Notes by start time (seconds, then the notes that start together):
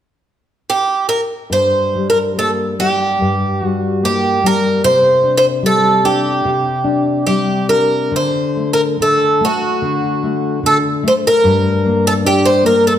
0.70 G4
1.09 A#4
1.50 G2 C5
1.95 G3
2.10 A#4
2.37 A#3 A4
2.79 G3 G4
3.21 G2
3.62 G3 F#4
4.03 A#3 G4
4.44 G3 A#4
4.84 C3 C5
5.23 D4
5.38 C5
5.63 G3 A4
6.04 D4 G4
6.45 C3
6.84 D4
7.27 G3 G4
7.69 D4 A#4
8.12 D3
8.16 C5
8.56 A3
8.73 A#4
9.00 D3 A4
9.41 A3
9.45 F#4
9.82 D3
10.23 A3
10.63 D3 A4
11.03 A3
11.08 C5
11.27 A#4
11.44 G2
11.86 A#3
12.07 A4
12.25 D4 G4
12.45 C5
12.64 A#3 A#4
12.87 A4